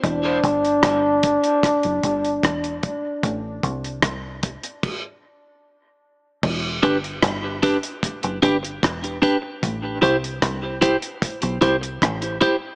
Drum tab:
CC |----------------|--------x-------|x---------------|----------------|
HH |x-xxx-xxxxxxxxx-|x-xxx-xx--------|--xxx-xxxxxxxxx-|x-xxx-xxxxxxxxx-|
SD |----r---r---r---|----r-----------|----r-------r---|----r-------r---|
BD |o-o-o-o-o-o-o-o-|o-o-o-o-o-------|o-o-o-o-o-o-o-o-|o-o-o-o-o-o-o-o-|